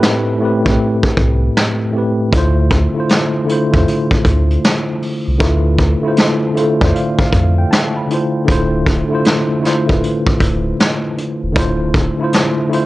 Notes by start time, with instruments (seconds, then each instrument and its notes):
Already playing: tine electric piano A2 A3 C4 G4 B4
0.03 snare
0.38 tine electric piano A2 A3 C4
0.43 tine electric piano G4 B4
0.63 sub bass B1, tine electric piano A2 A3 C4, kick
0.68 tine electric piano G4 B4
1.03 kick
1.17 sub bass C2, kick
1.57 snare
1.91 tine electric piano A2 A3 C4
1.96 tine electric piano G4 B4
2.31 sub bass D2, tine electric piano D3 A3 E4, kick, closed hi-hat
2.36 tine electric piano F4 C5
2.71 kick, closed hi-hat
2.93 tine electric piano D3 A3 E4
2.98 tine electric piano F4 C5
3.09 snare, closed hi-hat
3.45 tine electric piano D3 A3 E4, closed hi-hat
3.50 tine electric piano F4 C5
3.71 sub bass E2, tine electric piano D3 A3 E4, kick, closed hi-hat
3.76 tine electric piano F4 C5
3.88 closed hi-hat
4.11 kick
4.25 sub bass D2, kick, closed hi-hat
4.50 closed hi-hat
4.64 snare, closed hi-hat
5.02 open hi-hat
5.28 sub bass C2
5.38 sub bass D2, tine electric piano D3 A3 E4, kick, closed hi-hat
5.43 tine electric piano F4 B4
5.78 kick, closed hi-hat
6.01 tine electric piano D3 A3 E4
6.06 tine electric piano F4 C5
6.17 snare, closed hi-hat
6.53 tine electric piano D3 A3 E4 C5, closed hi-hat
6.59 tine electric piano F4 A4
6.78 sub bass E2, tine electric piano D3 A3 D5 E5, kick
6.84 tine electric piano F4 C5
6.95 tine electric piano F5, closed hi-hat
7.19 tine electric piano F5, kick
7.33 sub bass F2, kick, closed hi-hat
7.58 tine electric piano G5
7.71 tine electric piano A5, snare, closed hi-hat
7.97 tine electric piano B5
8.07 tine electric piano D3 A3 E4, closed hi-hat
8.12 tine electric piano F4 C5
8.45 sub bass D1, tine electric piano D3 A3 E4, kick
8.49 tine electric piano F4 C5, closed hi-hat
8.86 kick, closed hi-hat
9.08 tine electric piano D3 A3 E4
9.13 tine electric piano F4 C5
9.25 snare, closed hi-hat
9.60 tine electric piano D3 A3 E4
9.65 tine electric piano F4 C5, snare, closed hi-hat
9.86 sub bass E1, tine electric piano D3 A3 E4, kick, closed hi-hat
9.91 tine electric piano F4 B4
10.03 closed hi-hat
10.27 kick
10.40 sub bass D1, kick, closed hi-hat
10.80 snare, closed hi-hat
11.18 closed hi-hat
11.43 sub bass E1
11.53 sub bass D1, tine electric piano D3 A3 E4, kick
11.57 tine electric piano F4 C5, closed hi-hat
11.94 kick, closed hi-hat
12.17 tine electric piano D3 A3 E4
12.22 tine electric piano F4 C5
12.33 snare, closed hi-hat
12.68 tine electric piano D3 A3 E4
12.73 tine electric piano F4 C5, closed hi-hat